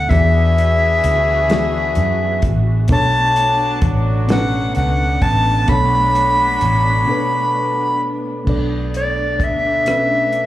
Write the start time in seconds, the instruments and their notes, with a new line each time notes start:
Already playing: fm electric piano B2 B3 D4 A4 E5, string section D4, recorder F#5
0.09 fingered electric bass E2, fm electric piano E3 B3 F#4 G#4, string section E3 F#4 G#4, horn section B3 D4 G#4, recorder E5, kick, closed hi-hat
0.13 fm electric piano D5
0.58 closed hi-hat
1.04 fingered electric bass D2, closed hi-hat
1.49 fm electric piano E3 B3 F#4 G#4, snare, closed hi-hat
1.53 fm electric piano E5
1.95 fingered electric bass F#2, closed hi-hat
2.42 fingered electric bass A1, kick, closed hi-hat
2.88 fingered electric bass B1, fm electric piano B2 B3 D4 A4, horn section F#3 D4 F#4, string section A3 B3 D4, kick, closed hi-hat
2.92 fm electric piano C#5, recorder A5
3.36 closed hi-hat
3.82 fingered electric bass A1, kick, closed hi-hat
4.27 fm electric piano B2 B3 C#4 A4, snare, closed hi-hat
4.31 fm electric piano B4, recorder F#5
4.36 fm electric piano D4
4.75 fingered electric bass C#2, recorder F#5, closed hi-hat
5.22 fingered electric bass A1, recorder A5, kick, closed hi-hat
5.66 fingered electric bass B1, fm electric piano B2 B3 D4 A4, horn section F#3 D4 F#4, recorder B5, kick, closed hi-hat
5.71 fm electric piano C#5
6.15 closed hi-hat
6.61 fingered electric bass A1, closed hi-hat
7.06 fm electric piano B2 B3 D4 A4
7.11 fm electric piano B4
8.45 fingered electric bass B1, fm electric piano B2 B3 D4 A4, string section A3 B3 D4, kick, crash
8.49 fm electric piano D5
8.94 recorder D5, closed hi-hat
9.40 fingered electric bass D2, recorder E5, kick, closed hi-hat
9.85 fingered electric bass B1, fm electric piano B2 B3 C#4 A4, cross-stick, closed hi-hat
9.90 fm electric piano B4
9.94 fm electric piano D4
10.32 closed hi-hat